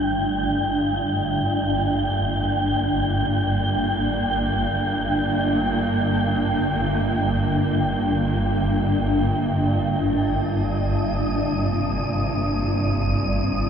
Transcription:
Already playing: G1 G2 D3 A3 G5
1.51 A#3
10.15 D#6
11.37 C3

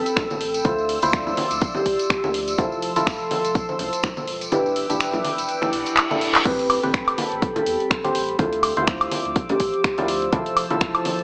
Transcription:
Already playing: C4 G4 A4 B4 G5 B5 E6
0.06 closed hi-hat, tambourine
0.16 finger snap, kick, closed hi-hat, tambourine, low conga
0.30 A1, tambourine, high conga
0.41 open hi-hat
0.54 closed hi-hat, tambourine
0.64 D2 F3 E4 F4 A4 C5 D5 C6 E6, kick, closed hi-hat, tambourine, high conga
0.78 tambourine
0.89 C6, open hi-hat
1.02 D2 E4 F4 C5 E6, closed hi-hat, tambourine, high conga
1.13 finger snap, kick, closed hi-hat, tambourine
1.27 tambourine, low conga
1.37 open hi-hat, high conga
1.51 D2, closed hi-hat, tambourine
1.61 kick, closed hi-hat, tambourine
1.75 G4, tambourine, high conga, low conga
1.86 C2, kick, open hi-hat
1.99 closed hi-hat, tambourine
2.10 finger snap, kick, closed hi-hat
2.24 D2, tambourine, high conga
2.34 open hi-hat
2.47 closed hi-hat, tambourine
2.58 F1 E4 F4 A4 C5 C6 E6, kick, closed hi-hat, high conga
2.72 tambourine
2.82 open hi-hat
2.96 F1 E4 F4 A4, closed hi-hat, tambourine, high conga
3.07 A5, finger snap, kick, closed hi-hat, tambourine
3.20 tambourine
3.31 open hi-hat, high conga
3.45 F1, closed hi-hat, tambourine
3.55 kick, closed hi-hat, tambourine
3.69 C5, tambourine, high conga
3.79 C2, open hi-hat, low conga
3.93 closed hi-hat, tambourine
4.03 finger snap, kick, closed hi-hat, low conga
4.17 E1, tambourine, high conga
4.27 E4 B4 G5 D6 E6, open hi-hat
4.41 G5, closed hi-hat, tambourine
4.52 E1 D4 E4 G4 B4, closed hi-hat, tambourine, high conga
4.66 tambourine
4.72 D5
4.76 open hi-hat
4.90 E1 D4 E4 G4, closed hi-hat, tambourine, high conga
5.00 finger snap, closed hi-hat, tambourine
5.13 tambourine, low conga
5.25 open hi-hat, high conga
5.38 E1, closed hi-hat, tambourine
5.48 closed hi-hat, tambourine, reverse cymbal
5.62 E4, finger snap, tambourine, high conga, low conga
5.73 B1, open hi-hat
5.86 closed hi-hat, tambourine
5.97 finger snap, clap, closed hi-hat, tambourine
6.11 E1 D4 E4 A4, tambourine, high conga
6.21 open hi-hat
6.35 clap, closed hi-hat, tambourine
6.45 A1 C4 G4 A4 B4 G5 B5, kick, closed hi-hat, crash, high conga
6.59 closed hi-hat
6.70 open hi-hat, high woodblock
6.83 A1 C4 G4 B4, closed hi-hat, high conga
6.94 finger snap, kick, closed hi-hat
7.08 closed hi-hat, high woodblock
7.18 open hi-hat, high conga
7.32 A1, closed hi-hat
7.42 kick, closed hi-hat
7.56 A4, closed hi-hat, high conga, low conga
7.66 E2, open hi-hat
7.80 closed hi-hat
7.91 finger snap, kick, closed hi-hat
8.04 A1 C4 G4 C5, closed hi-hat, high conga
8.15 open hi-hat
8.29 closed hi-hat
8.39 D2 F3 E4 F4 A4 C5 D6 E6, kick, closed hi-hat, high conga
8.53 closed hi-hat
8.63 open hi-hat, high woodblock
8.77 D2 E4 F4 C5, closed hi-hat, high conga
8.87 finger snap, kick, closed hi-hat
8.93 E6
9.01 closed hi-hat, high woodblock
9.11 open hi-hat, high conga
9.25 D2 C6, closed hi-hat
9.36 kick, closed hi-hat
9.49 G4, closed hi-hat, high conga, low conga
9.60 A1, kick, open hi-hat
9.74 closed hi-hat
9.84 finger snap, kick, closed hi-hat
9.98 D2 E4 F4 D5, closed hi-hat, high conga
10.08 open hi-hat
10.22 closed hi-hat
10.33 F1 E4 F4 A4 C5 A5, kick, closed hi-hat, high conga
10.46 closed hi-hat
10.57 open hi-hat, high woodblock
10.70 F1 E4 F4 A4, closed hi-hat, high conga
10.81 finger snap, kick, closed hi-hat
10.95 closed hi-hat, high woodblock
11.05 open hi-hat, high conga
11.19 F1, closed hi-hat

